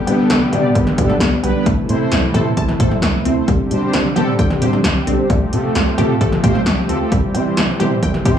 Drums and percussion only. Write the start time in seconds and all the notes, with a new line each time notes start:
0.07 closed hi-hat, cowbell
0.30 snare, closed hi-hat
0.52 closed hi-hat, mid tom, cowbell
0.75 kick, closed hi-hat
0.87 mid tom
0.98 kick, closed hi-hat
1.10 mid tom
1.20 snare, closed hi-hat
1.44 closed hi-hat, cowbell
1.66 kick, closed hi-hat
1.89 closed hi-hat
2.12 snare, closed hi-hat
2.34 closed hi-hat, mid tom, cowbell
2.57 kick, closed hi-hat
2.68 mid tom
2.80 kick, closed hi-hat
2.91 mid tom
3.02 snare, closed hi-hat
3.25 closed hi-hat
3.48 kick, closed hi-hat
3.71 closed hi-hat
3.93 snare, closed hi-hat
4.16 closed hi-hat, mid tom, cowbell
4.39 kick, closed hi-hat
4.50 mid tom
4.62 closed hi-hat
4.73 mid tom
4.84 snare, closed hi-hat
5.07 closed hi-hat
5.30 kick, closed hi-hat
5.53 closed hi-hat
5.75 snare, closed hi-hat
5.98 closed hi-hat, mid tom, cowbell
6.21 kick, closed hi-hat
6.32 mid tom
6.44 kick, closed hi-hat
6.55 mid tom
6.66 snare, closed hi-hat
6.89 closed hi-hat
7.12 kick, closed hi-hat
7.34 closed hi-hat, cowbell
7.57 snare, closed hi-hat
7.80 closed hi-hat, mid tom, cowbell
8.03 kick, closed hi-hat
8.14 mid tom
8.25 kick, closed hi-hat